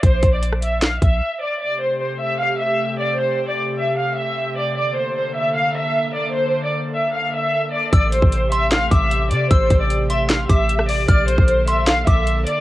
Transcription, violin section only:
X:1
M:4/4
L:1/16
Q:1/4=152
K:Aphr
V:1 name="Violin section"
c3 d z2 e2 f2 e4 d2 | d2 c2 c2 e2 f2 e4 d2 | c3 d z2 e2 f2 e4 d2 | d2 c2 c2 e2 f2 e4 d2 |
c3 d z2 e2 f2 e4 d2 | d2 c2 c2 e2 f2 e4 d2 | c3 d z2 e2 f2 e4 d2 | d2 c2 c2 e2 f2 e4 d2 |]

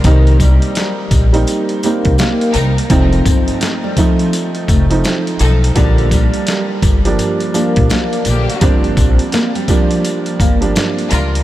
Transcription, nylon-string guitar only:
X:1
M:4/4
L:1/16
Q:"Swing 16ths" 1/4=84
K:Gm
V:1 name="Nylon-string guitar"
E,2 G,8 B,2 B,2 z2 | C4 A, G, F,2 z2 A, z4 z | D,2 G,8 B,2 B,2 z2 | C4 B, G, F,2 z2 B, z4 z |]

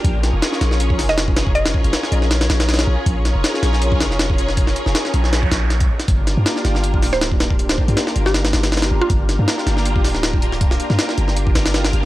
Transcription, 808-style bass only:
X:1
M:4/4
L:1/16
Q:"Swing 16ths" 1/4=159
K:Gphr
V:1 name="808-style bass" clef=bass
B,,,3 F,,, z2 B,,,4 F,,,6- | F,,,2 z F,,, z2 B,,,4 B,,,4 B,,, z | B,,,3 F,,, z2 B,,,4 F,,,6- | F,,,2 z F,,, z2 B,,,4 B,,,3 _D,, z2 |
G,,,3 G,, z2 G,,,4 D,,,6- | D,,,2 z G,, z2 G,,,4 G,,,4 G,,, z | G,,,3 G,, z2 G,,,4 D,,,6- | D,,,2 z G,, z2 G,,,4 G,,,4 G,,, z |]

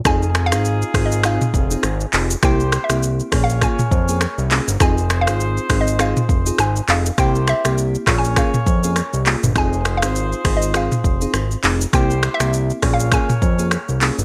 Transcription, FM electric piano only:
X:1
M:4/4
L:1/16
Q:"Swing 16ths" 1/4=101
K:Fm
V:1 name="FM electric piano"
[CEFA] z2 [CEFA]3 [CEFA]2 [CEFA] z2 [CEFA] z2 [CEFA] z | [B,C=EG] z2 [B,CEG]3 [B,DFA]2 [B,DFA] z2 [B,DFA] z2 [B,DFA] z | [CEFA] z2 [CEFA]3 [CEFA]2 [CEFA] z2 [CEFA] z2 [CEFA] z | [B,C=EG] z2 [B,CEG]3 [B,DFA]2 [B,DFA] z2 [B,DFA] z2 [B,DFA] z |
[CEFA] z2 [CEFA]3 [CEFA]2 [CEFA] z2 [CEFA] z2 [CEFA] z | [B,C=EG] z2 [B,CEG]3 [B,DFA]2 [B,DFA] z2 [B,DFA] z2 [B,DFA] z |]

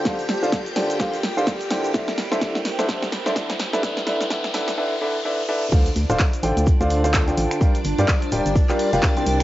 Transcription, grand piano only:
X:1
M:4/4
L:1/16
Q:"Swing 16ths" 1/4=127
K:Gdor
V:1 name="Grand piano"
[D,FAcdf] z2 [D,FAcdf] z2 [D,FAcdg]2 [D,FAcdf] z2 [D,FAcdf] z2 [D,EAcdg]2 | [D,EAcde] z2 [D,EAcde] [D,EAc] z2 [D,EAcde] [D,EAce] z2 [D,EAcde] [D,Ecd] z2 [D,EA=Bde] | [D,EAde] z [D,EA=Bde] z [D,EABde] z [D,EABde] z [D,EABde] z [D,EABde] z [D,EABde] z [D,EABde] z | [D,FAcdf] z2 [D,FAcdf] z2 [D,FAcdg]2 z [D,FAcdf]2 [D,FAcdf]2 [D,FAcdg]3 |
[G,FGBdf] z2 [G,FGBdf] z2 [G,FGBdg]2 z [G,FGBdf]2 [G,FGBdf]2 [C,EGBcg]3 |]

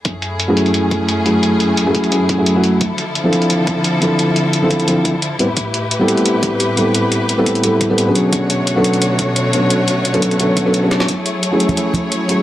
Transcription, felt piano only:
X:1
M:4/4
L:1/16
Q:1/4=174
K:F#m
V:1 name="Felt piano"
z4 z [F,A,CEG]8- [F,A,CEG] [F,A,CEG]2- | [F,A,CEG]4- [F,A,CEG] [F,A,CEG]3 [F,A,CEG]3 [F,A,CEG]2 [F,A,CEF]3 | z4 z [=F,=CDEA]8- [F,CDEA] [F,CDEA]2- | [=F,=CDEA]4- [F,CDEA] [F,CDEA]3 [F,CDEA]3 z3 [=G,B,CEB] z |
z4 z [=G,B,=CEA]8- [G,B,CEA] [G,B,CEA]2- | [=G,B,=CEA]4- [G,B,CEA] [G,B,CEA]3 [G,B,CEA]3 [G,B,CEA]2 [F,B,^CD^G]3- | [F,B,CDG]4- [F,B,CDG] [F,B,CDA]8- [F,B,CDA] [F,B,CDA]2- | [F,B,CDA]4- [F,B,CDA] [F,B,CDA]3 [F,B,CDA]3 [F,B,CDA]2 [F,B,CDG]3 |
z4 z [F,A,CEG]8- [F,A,CEG] [F,A,CEG]2 |]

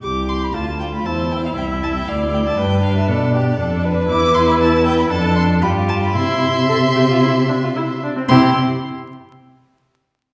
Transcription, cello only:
X:1
M:4/4
L:1/8
Q:1/4=117
K:C
V:1 name="Cello" clef=bass
C,,2 D,,2 E,,2 C,,2 | D,,2 G,,2 B,,2 F,,2 | E,,4 F,,2 G,,2 | C,6- C, z |
C, z6 z |]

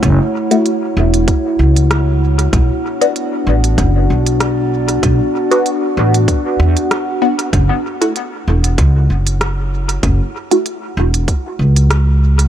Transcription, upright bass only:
X:1
M:4/4
L:1/8
Q:"Swing 16ths" 1/4=96
K:F#m
V:1 name="Upright bass" clef=bass
F,,, z2 E,,, z C,,3 | B,,, z2 A,,, F,,, B,,,3 | B,,, z2 A,,, z E,, z2 | F,,, z2 E,,, C,, F,,,3 |
F,,, z2 E,,, z C,,3 |]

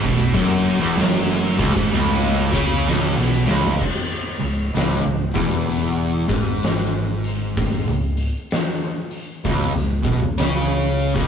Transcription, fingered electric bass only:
X:1
M:4/4
L:1/16
Q:"Swing" 1/4=64
K:C#m
V:1 name="Fingered electric bass" clef=bass
B,,, F,,,2 E,,, F,,,2 C,,, G,,, C,,,2 C,,2 C,,, B,,, C,,,2 | z2 C,,,2 C,,, C,,, E,,,4 G,,,6- | G,,, C,,,2 z4 z C,,, C,,, B,,, C,,, C,,3 C,,, |]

